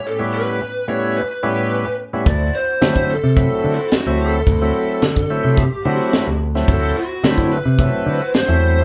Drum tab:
HH |----------------|x---x---x---x---|x---x---x---x---|x---x---x---x---|
SD |----------------|----o-------o---|----o-------o--o|----o-------o---|
BD |----------------|o----o--o-------|o----o--o-------|o----o--o-------|